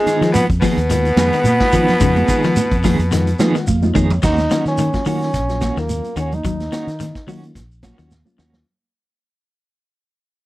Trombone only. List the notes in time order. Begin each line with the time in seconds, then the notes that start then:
Already playing: G#3
0.33 B3
0.62 B3
4.24 D#4
4.68 C#4
5.08 C#4
5.79 A#3
6.19 C#4
6.34 D#4